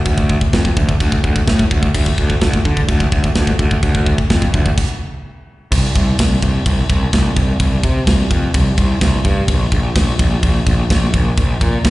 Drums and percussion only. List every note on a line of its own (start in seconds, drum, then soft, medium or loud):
0.05 kick medium
0.05 china medium
0.18 kick medium
0.29 kick medium
0.41 kick medium
0.53 kick medium
0.53 snare loud
0.53 china medium
0.65 kick medium
0.77 kick medium
0.89 kick medium
1.00 kick medium
1.00 china medium
1.12 kick medium
1.24 kick medium
1.36 kick medium
1.47 kick medium
1.47 snare loud
1.47 china medium
1.59 kick medium
1.71 kick medium
1.83 kick medium
1.94 kick medium
1.94 china medium
1.94 crash loud
2.06 kick medium
2.18 kick medium
2.30 kick medium
2.41 kick medium
2.41 snare loud
2.41 china medium
2.54 kick medium
2.65 kick medium
2.77 kick medium
2.89 kick loud
2.89 china medium
3.00 kick medium
3.12 kick medium
3.24 kick medium
3.35 kick medium
3.35 snare loud
3.35 china medium
3.47 kick medium
3.59 kick medium
3.71 kick medium
3.83 kick medium
3.83 china medium
3.95 kick medium
4.06 kick medium
4.18 kick medium
4.30 kick medium
4.30 snare loud
4.30 china medium
4.42 kick medium
4.54 kick medium
4.66 kick medium
4.78 kick loud
4.78 crash loud
5.72 kick loud
5.72 crash loud
5.72 crash medium
5.96 kick medium
5.96 crash medium
6.19 kick loud
6.19 snare loud
6.19 crash medium
6.42 kick medium
6.42 crash medium
6.66 kick loud
6.66 crash medium
6.90 kick loud
6.90 crash medium
7.13 kick loud
7.13 snare loud
7.13 crash medium
7.36 kick medium
7.36 crash medium
7.60 kick loud
7.60 crash medium
7.83 kick medium
7.83 crash medium
8.07 kick loud
8.07 snare loud
8.07 crash medium
8.31 kick medium
8.31 crash medium
8.54 kick loud
8.54 crash medium
8.78 kick medium
8.78 crash medium
9.01 kick loud
9.01 snare loud
9.01 crash medium
9.25 kick medium
9.25 crash medium
9.48 kick loud
9.48 crash medium
9.72 kick medium
9.72 crash medium
9.96 kick loud
9.96 snare loud
9.96 crash medium
10.19 kick loud
10.19 crash medium
10.43 kick loud
10.43 crash medium
10.67 kick medium
10.67 crash medium
10.90 kick loud
10.90 snare loud
10.90 crash medium
11.14 kick medium
11.14 crash medium
11.37 kick loud
11.37 crash medium
11.61 kick medium
11.61 crash medium
11.85 kick loud
11.85 snare loud
11.85 crash medium